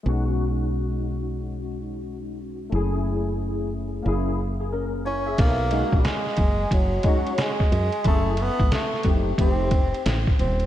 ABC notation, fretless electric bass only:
X:1
M:4/4
L:1/16
Q:"Swing 16ths" 1/4=90
K:B
V:1 name="Fretless electric bass" clef=bass
B,,,16 | F,,,8 F,,,8 | B,,,3 A,,, z2 F,,,2 F,,,2 z4 F,, z | F,,,3 G,,, z2 F,,,2 =F,,,4 =A,,,2 _E,,,2 |]